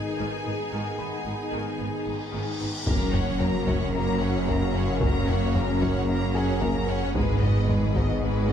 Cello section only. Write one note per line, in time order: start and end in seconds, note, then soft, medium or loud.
0.19 0.27 G#2 soft
0.46 0.54 G#2 soft
0.73 0.81 G#2 soft
1.00 1.08 G#2 soft
1.26 1.34 G#2 soft
1.53 1.61 G#2 soft
1.81 1.89 G#2 soft
2.07 2.15 G#2 soft
2.34 2.42 G#2 soft
2.61 2.69 G#2 soft
2.87 7.12 F#2 medium
7.15 8.53 G#2 medium